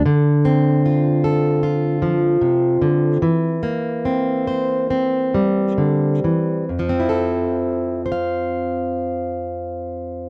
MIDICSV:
0, 0, Header, 1, 3, 480
1, 0, Start_track
1, 0, Key_signature, -1, "major"
1, 0, Tempo, 782269
1, 35, Time_signature, 4, 2, 24, 8
1, 1475, Tempo, 828729
1, 2915, Tempo, 877193
1, 3395, Tempo, 914634
1, 5769, End_track
2, 0, Start_track
2, 0, Title_t, "Harp"
2, 0, Program_c, 0, 46
2, 0, Note_on_c, 0, 62, 51
2, 1031, Note_off_c, 0, 62, 0
2, 5769, End_track
3, 0, Start_track
3, 0, Title_t, "Steel-string acoustic guitar"
3, 0, Program_c, 1, 25
3, 34, Note_on_c, 1, 50, 61
3, 277, Note_on_c, 1, 60, 46
3, 525, Note_on_c, 1, 65, 45
3, 762, Note_on_c, 1, 69, 47
3, 993, Note_off_c, 1, 65, 0
3, 1000, Note_on_c, 1, 65, 49
3, 1240, Note_on_c, 1, 53, 51
3, 1475, Note_off_c, 1, 50, 0
3, 1481, Note_on_c, 1, 48, 55
3, 1711, Note_off_c, 1, 48, 0
3, 1714, Note_on_c, 1, 50, 50
3, 1920, Note_off_c, 1, 65, 0
3, 1920, Note_off_c, 1, 69, 0
3, 1946, Note_off_c, 1, 50, 0
3, 1947, Note_off_c, 1, 53, 0
3, 1948, Note_on_c, 1, 52, 57
3, 2182, Note_off_c, 1, 60, 0
3, 2184, Note_on_c, 1, 58, 45
3, 2430, Note_on_c, 1, 60, 43
3, 2674, Note_on_c, 1, 72, 44
3, 2916, Note_off_c, 1, 60, 0
3, 2923, Note_on_c, 1, 60, 44
3, 3164, Note_on_c, 1, 55, 46
3, 3398, Note_off_c, 1, 52, 0
3, 3400, Note_on_c, 1, 50, 45
3, 3635, Note_off_c, 1, 50, 0
3, 3644, Note_on_c, 1, 52, 38
3, 3847, Note_off_c, 1, 72, 0
3, 3850, Note_off_c, 1, 55, 0
3, 3875, Note_off_c, 1, 58, 0
3, 3879, Note_off_c, 1, 52, 0
3, 3881, Note_on_c, 1, 41, 43
3, 3933, Note_on_c, 1, 53, 42
3, 3979, Note_off_c, 1, 60, 0
3, 3986, Note_on_c, 1, 60, 39
3, 4040, Note_on_c, 1, 64, 36
3, 4090, Note_on_c, 1, 69, 37
3, 4595, Note_off_c, 1, 64, 0
3, 4597, Note_on_c, 1, 72, 49
3, 4627, Note_off_c, 1, 69, 0
3, 4629, Note_on_c, 1, 77, 53
3, 5769, Note_off_c, 1, 41, 0
3, 5769, Note_off_c, 1, 53, 0
3, 5769, Note_off_c, 1, 60, 0
3, 5769, Note_off_c, 1, 72, 0
3, 5769, Note_off_c, 1, 77, 0
3, 5769, End_track
0, 0, End_of_file